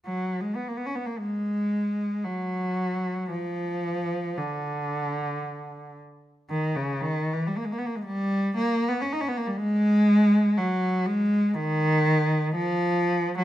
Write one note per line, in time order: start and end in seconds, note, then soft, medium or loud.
0.06 0.38 F#3 medium
0.41 0.56 G#3 medium
0.56 0.68 B3 medium
0.68 0.77 A#3 medium
0.77 0.85 B3 medium
0.86 0.95 C#4 medium
0.95 1.06 B3 medium
1.06 1.17 A#3 medium
1.18 2.24 G#3 medium
2.24 3.30 F#3 medium
3.31 4.35 F3 medium
4.37 5.96 D3 medium
6.50 6.74 D#3 medium
6.76 7.01 C#3 medium
7.00 7.32 D#3 medium
7.33 7.46 E3 medium
7.47 7.57 G3 medium
7.57 7.65 A#3 medium
7.65 7.71 G#3 medium
7.72 7.79 A#3 medium
7.78 7.86 B3 medium
7.86 7.95 A#3 medium
7.96 8.05 G#3 medium
8.06 8.56 G3 medium
8.57 8.87 A#3 medium
8.88 9.02 B3 medium
9.02 9.12 C#4 medium
9.12 9.21 D#4 medium
9.21 9.28 C#4 medium
9.28 9.36 B3 medium
9.37 9.46 A#3 medium
9.47 9.57 G3 medium
9.57 10.56 G#3 loud
10.57 11.06 F#3 medium
11.06 11.55 G#3 medium
11.54 12.54 D#3 loud
12.56 13.35 F3 loud
13.38 13.44 F#3 medium